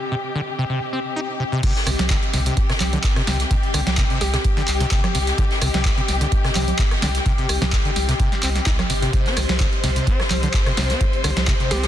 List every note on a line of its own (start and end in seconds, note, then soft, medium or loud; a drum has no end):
0.00 11.88 C4 medium
0.00 1.62 G4 medium
0.00 11.88 G4 medium
0.00 11.88 D#5 medium
0.12 0.15 C3 loud
0.35 0.41 D3 loud
0.59 0.65 C3 medium
0.69 0.80 C3 medium
0.93 1.00 C4 medium
1.16 1.21 D#4 loud
1.40 1.44 C3 medium
1.52 1.61 C3 loud
1.63 9.14 G4 medium
1.63 kick loud
1.63 closed hi-hat medium
1.63 crash loud
1.63 ride medium
1.76 snare medium
1.76 closed hi-hat soft
1.87 1.96 C2 loud
1.87 1.91 C3 loud
1.87 cross-stick medium
1.87 open hi-hat loud
1.87 ride medium
1.99 2.16 C2 loud
1.99 snare soft
1.99 snare medium
1.99 closed hi-hat medium
1.99 low conga loud
2.10 2.17 D3 loud
2.10 kick loud
2.10 snare loud
2.10 clap loud
2.10 closed hi-hat medium
2.10 ride medium
2.23 closed hi-hat soft
2.23 ride soft
2.33 2.51 C2 medium
2.33 2.40 C3 loud
2.33 snare soft
2.33 open hi-hat loud
2.33 ride medium
2.46 2.55 C3 medium
2.46 closed hi-hat medium
2.57 kick loud
2.57 closed hi-hat medium
2.57 ride medium
2.70 2.73 C3 loud
2.70 cross-stick medium
2.70 snare soft
2.70 closed hi-hat soft
2.80 2.98 C2 loud
2.80 snare soft
2.80 clap medium
2.80 open hi-hat loud
2.80 ride medium
2.80 low conga medium
2.93 2.99 D3 loud
2.93 closed hi-hat medium
2.93 low conga medium
3.04 3.21 G1 medium
3.04 kick loud
3.04 snare loud
3.04 clap loud
3.04 closed hi-hat medium
3.04 ride medium
3.16 3.22 C3 loud
3.16 cross-stick medium
3.16 snare soft
3.16 closed hi-hat soft
3.27 3.45 C2 medium
3.27 3.38 C3 medium
3.27 snare medium
3.27 open hi-hat loud
3.27 ride medium
3.40 snare soft
3.40 closed hi-hat medium
3.51 3.55 C3 loud
3.51 kick loud
3.51 closed hi-hat medium
3.51 ride medium
3.63 closed hi-hat soft
3.74 3.83 C2 loud
3.74 3.81 D3 loud
3.74 cross-stick medium
3.74 open hi-hat loud
3.74 ride medium
3.86 4.03 C2 loud
3.86 snare medium
3.86 closed hi-hat medium
3.86 low conga medium
3.97 4.04 C3 loud
3.97 kick loud
3.97 snare loud
3.97 clap loud
3.97 closed hi-hat medium
3.97 ride medium
4.10 4.19 C3 medium
4.10 closed hi-hat soft
4.21 4.38 C2 medium
4.21 4.29 G4 medium
4.21 snare soft
4.21 open hi-hat loud
4.21 ride medium
4.33 4.37 C3 loud
4.33 4.41 G4 medium
4.33 snare medium
4.33 closed hi-hat medium
4.44 kick loud
4.44 closed hi-hat medium
4.44 ride medium
4.57 4.63 D3 loud
4.57 snare soft
4.57 closed hi-hat soft
4.68 4.85 C2 loud
4.68 clap medium
4.68 open hi-hat loud
4.68 ride medium
4.80 4.86 C3 loud
4.80 snare soft
4.80 closed hi-hat medium
4.91 5.09 G1 medium
4.91 5.02 C3 medium
4.91 kick loud
4.91 snare loud
4.91 clap loud
4.91 closed hi-hat medium
4.91 ride medium
5.04 cross-stick medium
5.04 snare soft
5.04 closed hi-hat soft
5.04 low conga loud
5.15 5.32 C2 medium
5.15 5.19 C3 loud
5.15 open hi-hat loud
5.15 ride medium
5.27 snare soft
5.27 closed hi-hat medium
5.38 5.45 D3 loud
5.38 kick loud
5.38 closed hi-hat medium
5.38 ride medium
5.51 snare medium
5.51 closed hi-hat soft
5.61 5.71 C2 loud
5.61 5.69 C3 loud
5.61 cross-stick medium
5.61 open hi-hat loud
5.61 ride medium
5.74 5.91 C2 loud
5.74 5.83 C3 medium
5.74 snare soft
5.74 snare medium
5.74 closed hi-hat medium
5.74 low conga loud
5.84 kick loud
5.84 snare loud
5.84 clap loud
5.84 closed hi-hat medium
5.84 ride loud
5.98 6.01 C3 loud
5.98 closed hi-hat soft
5.98 ride soft
6.08 6.26 C2 medium
6.08 snare soft
6.08 open hi-hat loud
6.08 ride medium
6.21 6.27 D3 loud
6.21 closed hi-hat medium
6.32 kick loud
6.32 closed hi-hat medium
6.32 ride medium
6.44 6.51 C3 loud
6.44 cross-stick medium
6.44 snare medium
6.44 closed hi-hat soft
6.55 6.73 C2 loud
6.55 6.66 C3 medium
6.55 snare soft
6.55 clap medium
6.55 open hi-hat loud
6.55 ride medium
6.55 low conga medium
6.68 closed hi-hat medium
6.68 low conga loud
6.79 6.96 G1 medium
6.79 6.83 C3 loud
6.79 kick loud
6.79 snare loud
6.79 clap loud
6.79 closed hi-hat medium
6.79 ride medium
6.91 cross-stick medium
6.91 snare soft
6.91 closed hi-hat soft
7.02 7.20 C2 medium
7.02 7.09 D3 loud
7.02 snare medium
7.02 open hi-hat loud
7.02 ride medium
7.15 snare soft
7.15 closed hi-hat medium
7.26 7.33 C3 loud
7.26 kick loud
7.26 closed hi-hat medium
7.26 ride medium
7.38 7.47 C3 medium
7.38 closed hi-hat soft
7.49 7.58 C2 loud
7.49 cross-stick medium
7.49 open hi-hat loud
7.49 ride medium
7.61 7.78 C2 loud
7.61 7.65 C3 loud
7.61 snare medium
7.61 closed hi-hat medium
7.61 low conga loud
7.72 kick loud
7.72 snare loud
7.72 clap loud
7.72 closed hi-hat medium
7.72 ride loud
7.85 7.91 D3 loud
7.85 closed hi-hat soft
7.96 8.13 C2 medium
7.96 snare soft
7.96 open hi-hat loud
7.96 ride medium
8.09 8.15 C3 loud
8.09 snare soft
8.09 closed hi-hat medium
8.19 8.30 C3 medium
8.19 kick loud
8.19 closed hi-hat soft
8.19 ride medium
8.32 snare soft
8.32 closed hi-hat soft
8.43 8.60 C2 medium
8.43 8.50 C4 medium
8.43 clap medium
8.43 open hi-hat loud
8.43 ride medium
8.56 snare soft
8.56 closed hi-hat medium
8.66 8.84 C2 loud
8.66 8.71 D#4 loud
8.66 kick loud
8.66 snare loud
8.66 clap loud
8.66 closed hi-hat medium
8.66 ride medium
8.79 cross-stick medium
8.79 snare soft
8.79 closed hi-hat soft
8.79 low conga loud
8.90 9.07 G1 medium
8.90 8.94 C3 medium
8.90 open hi-hat loud
8.90 ride medium
9.02 9.11 C3 loud
9.02 snare soft
9.02 closed hi-hat medium
9.13 11.88 C5 medium
9.13 kick loud
9.13 closed hi-hat medium
9.13 ride medium
9.26 9.38 C4 medium
9.26 snare medium
9.26 closed hi-hat soft
9.36 9.46 C2 loud
9.36 9.41 C3 loud
9.36 cross-stick medium
9.36 open hi-hat loud
9.36 ride medium
9.49 9.66 C2 loud
9.49 snare medium
9.49 snare soft
9.49 closed hi-hat medium
9.49 low conga medium
9.60 9.67 D3 loud
9.60 kick loud
9.60 snare loud
9.60 clap loud
9.60 closed hi-hat medium
9.60 ride medium
9.73 closed hi-hat soft
9.73 ride soft
9.83 10.01 C2 medium
9.83 9.90 C3 loud
9.83 snare soft
9.83 open hi-hat loud
9.83 ride medium
9.96 10.08 C3 medium
9.96 closed hi-hat medium
10.07 10.21 C4 medium
10.07 kick loud
10.07 closed hi-hat medium
10.07 ride medium
10.20 10.23 C3 loud
10.20 cross-stick medium
10.20 snare soft
10.20 closed hi-hat soft
10.30 10.48 C2 loud
10.30 snare soft
10.30 clap medium
10.30 open hi-hat loud
10.30 ride medium
10.30 low conga medium
10.43 10.49 D3 loud
10.43 closed hi-hat medium
10.43 low conga medium
10.54 10.71 G1 medium
10.54 kick loud
10.54 snare loud
10.54 clap loud
10.54 closed hi-hat medium
10.54 ride medium
10.66 10.72 C3 loud
10.66 cross-stick medium
10.66 snare soft
10.66 closed hi-hat soft
10.77 10.95 C2 medium
10.77 10.91 C3 medium
10.77 snare medium
10.77 open hi-hat loud
10.77 ride medium
10.90 11.02 C4 medium
10.90 snare soft
10.90 closed hi-hat medium
11.00 11.05 C3 loud
11.00 kick loud
11.00 closed hi-hat medium
11.00 ride medium
11.13 closed hi-hat soft
11.24 11.33 C2 loud
11.24 11.31 D3 loud
11.24 cross-stick medium
11.24 open hi-hat loud
11.24 ride medium
11.36 11.53 C2 loud
11.36 snare medium
11.36 closed hi-hat medium
11.36 low conga medium
11.47 11.54 C3 loud
11.47 kick loud
11.47 snare loud
11.47 clap loud
11.47 closed hi-hat medium
11.47 ride medium
11.60 11.72 C3 medium
11.60 closed hi-hat soft
11.71 11.88 C2 medium
11.71 11.85 C4 medium
11.71 11.79 G4 medium
11.71 snare soft
11.71 open hi-hat loud
11.71 ride medium
11.83 11.87 C3 loud
11.83 11.88 G4 medium
11.83 snare soft
11.83 closed hi-hat medium